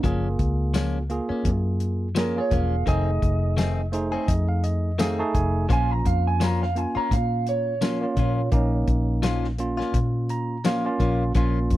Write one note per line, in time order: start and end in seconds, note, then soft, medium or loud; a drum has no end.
0.03 0.35 F#1 medium
0.03 0.27 F3 medium
0.03 1.01 A#3 medium
0.03 0.27 A#3 medium
0.03 0.28 C#4 medium
0.03 1.01 F4 medium
0.03 1.02 G#4 medium
0.03 kick loud
0.03 closed hi-hat medium
0.39 1.19 C#2 medium
0.39 kick medium
0.39 closed hi-hat medium
0.74 0.97 F3 medium
0.74 0.98 A#3 medium
0.74 0.98 C#4 medium
0.74 snare loud
0.74 closed hi-hat medium
0.74 tambourine loud
1.10 2.07 A#3 medium
1.10 2.08 F4 medium
1.10 2.08 G#4 medium
1.10 closed hi-hat soft
1.29 1.50 A#3 soft
1.29 1.49 C#4 soft
1.29 muted fingered electric bass stroke soft
1.45 2.38 F#2 loud
1.45 kick medium
1.45 closed hi-hat medium
1.80 closed hi-hat medium
2.15 2.39 F3 medium
2.15 2.34 A#3 medium
2.15 2.39 A#3 medium
2.15 2.40 C#4 medium
2.15 2.34 F4 medium
2.15 2.35 G#4 medium
2.15 2.38 A#4 loud
2.15 snare loud
2.15 closed hi-hat medium
2.15 tambourine loud
2.36 2.83 A#3 medium
2.36 2.83 F4 medium
2.36 2.83 G#4 medium
2.36 2.52 C#5 medium
2.51 2.83 E1 medium
2.51 2.74 F3 soft
2.51 2.75 A#3 soft
2.51 2.75 C#4 medium
2.51 2.86 F5 medium
2.51 kick medium
2.51 closed hi-hat medium
2.86 3.18 F1 medium
2.86 3.09 D#3 medium
2.86 3.10 A3 medium
2.86 3.84 A3 medium
2.86 3.10 C4 medium
2.86 3.85 D#4 medium
2.86 3.10 G#4 medium
2.86 3.85 G#4 medium
2.86 4.25 D#5 medium
2.86 kick medium
2.86 closed hi-hat medium
3.22 4.15 F1 medium
3.22 kick medium
3.22 closed hi-hat medium
3.57 3.80 D#3 medium
3.57 3.80 A3 medium
3.57 3.81 C4 medium
3.57 3.81 G#4 medium
3.57 snare medium
3.57 closed hi-hat medium
3.57 tambourine loud
3.92 4.90 A3 medium
3.92 4.90 D#4 medium
3.92 4.91 G#4 medium
3.92 4.26 C5 medium
3.92 closed hi-hat medium
4.12 4.33 A3 soft
4.12 4.32 C4 medium
4.12 4.32 G#4 medium
4.28 5.22 F2 medium
4.28 4.47 D#5 medium
4.28 kick medium
4.28 closed hi-hat medium
4.49 4.63 F5 medium
4.64 4.97 D#5 medium
4.64 closed hi-hat medium
4.99 5.22 D#3 medium
4.99 5.22 A3 medium
4.99 5.17 A3 medium
4.99 5.22 C4 medium
4.99 5.17 D#4 medium
4.99 5.22 G#4 medium
4.99 5.18 G#4 medium
4.99 5.18 F5 medium
4.99 snare loud
4.99 closed hi-hat medium
4.99 tambourine loud
5.19 5.65 A3 medium
5.19 5.66 D#4 medium
5.19 5.66 G#4 medium
5.19 5.34 A5 medium
5.35 5.66 F1 medium
5.35 5.67 G#5 medium
5.35 kick medium
5.35 closed hi-hat medium
5.69 6.01 A#1 loud
5.69 5.92 F3 medium
5.69 6.67 A#3 medium
5.69 5.93 A#3 medium
5.69 6.67 C#4 medium
5.69 5.93 C#4 medium
5.69 5.93 F4 medium
5.69 6.68 F4 medium
5.69 5.91 G#5 loud
5.69 kick medium
5.69 closed hi-hat medium
5.91 6.05 A#5 medium
6.05 6.85 F2 medium
6.05 6.25 F5 medium
6.05 kick medium
6.05 closed hi-hat medium
6.27 6.43 G#5 medium
6.40 6.63 F3 medium
6.40 6.64 A#3 medium
6.40 6.64 C#4 medium
6.40 6.64 F4 medium
6.40 6.61 A#5 medium
6.40 snare loud
6.40 closed hi-hat medium
6.40 tambourine loud
6.63 6.78 F5 medium
6.63 snare soft
6.75 7.73 A#3 medium
6.75 7.73 C#4 medium
6.75 7.74 F4 medium
6.75 6.96 G#5 medium
6.75 closed hi-hat medium
6.95 7.16 A#3 soft
6.95 7.16 C#4 soft
6.95 7.15 F4 soft
6.95 7.11 A#5 medium
6.95 muted fingered electric bass stroke soft
7.11 8.04 A#2 loud
7.11 7.47 F5 medium
7.11 kick medium
7.11 closed hi-hat medium
7.47 8.85 C#5 medium
7.47 closed hi-hat medium
7.81 8.04 F3 medium
7.81 7.99 A#3 medium
7.81 8.05 A#3 medium
7.81 8.00 C#4 medium
7.81 8.05 C#4 medium
7.81 8.05 F4 medium
7.81 8.00 F4 medium
7.81 snare medium
7.81 closed hi-hat medium
7.81 tambourine loud
8.01 8.48 A#3 medium
8.01 8.49 C#4 medium
8.01 8.49 F4 medium
8.17 8.48 A#2 medium
8.17 8.40 F3 medium
8.17 8.40 A#3 medium
8.17 8.41 C#4 soft
8.17 8.41 F4 medium
8.17 kick medium
8.17 closed hi-hat medium
8.52 8.83 A#1 loud
8.52 9.49 A#3 medium
8.52 9.50 C#4 medium
8.52 9.50 D#4 medium
8.52 kick medium
8.52 closed hi-hat medium
8.88 9.81 A#1 medium
8.88 kick medium
8.88 closed hi-hat medium
9.23 9.46 F3 medium
9.23 9.46 A#3 medium
9.23 9.47 C#4 medium
9.23 9.47 F4 medium
9.23 snare medium
9.23 closed hi-hat medium
9.23 tambourine loud
9.44 snare soft
9.58 10.56 A#3 medium
9.58 10.56 C#4 medium
9.58 10.56 F4 medium
9.58 closed hi-hat medium
9.77 9.99 A#3 soft
9.77 9.98 C#4 soft
9.77 9.97 F4 medium
9.77 snare soft
9.94 10.87 A#2 medium
9.94 kick medium
9.94 closed hi-hat medium
10.29 10.63 A#5 medium
10.29 closed hi-hat medium
10.64 10.88 F3 medium
10.64 10.83 A#3 medium
10.64 10.88 A#3 medium
10.64 10.88 C#4 medium
10.64 10.83 C#4 medium
10.64 10.88 F4 medium
10.64 10.84 F4 medium
10.64 11.32 F5 medium
10.64 snare medium
10.64 closed hi-hat medium
10.64 tambourine loud
10.85 11.31 A#3 medium
10.85 11.32 C#4 medium
10.85 11.32 F4 medium
11.00 11.31 A#1 medium
11.00 11.23 F3 soft
11.00 11.23 A#3 medium
11.00 11.24 C#4 medium
11.00 11.24 F4 medium
11.00 kick medium
11.00 closed hi-hat medium
11.35 11.66 A#1 medium
11.35 11.58 F3 medium
11.35 11.77 A#3 medium
11.35 11.58 A#3 medium
11.35 11.77 C#4 medium
11.35 11.59 C#4 medium
11.35 11.59 F4 medium
11.35 11.77 F4 medium
11.35 kick medium
11.35 closed hi-hat medium
11.70 11.77 F2 medium
11.70 kick medium
11.70 closed hi-hat medium